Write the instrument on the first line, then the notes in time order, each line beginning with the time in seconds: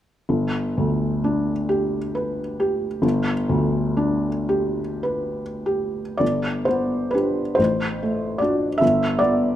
felt piano
0.29 G1
0.77 D2
1.24 D4
1.69 G4
2.15 B4
2.60 G4
3.02 G1
3.49 D2
3.97 D4
4.49 G4
5.03 B4
5.66 G4
6.17 G1 D5
6.65 B3 C5
7.11 D4 G4 B4
7.55 A1 C5
8.03 A3
8.38 D4 F#4 D5
8.78 G1 E5
9.19 B3 D5